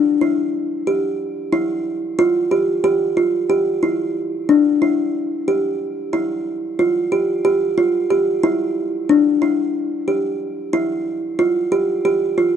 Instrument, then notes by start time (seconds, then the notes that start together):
kalimba
0.21 E4
0.87 G4
1.53 E4
2.19 F4
2.51 G4
2.84 G4
3.17 F4
3.50 G4
3.83 E4
4.49 D4
4.82 E4
5.48 G4
6.13 E4
6.79 F4
7.12 G4
7.45 G4
7.78 F4
8.10 G4
8.43 E4
9.09 D4
9.42 E4
10.08 G4
10.73 E4
11.39 F4
11.72 G4
12.05 G4
12.38 F4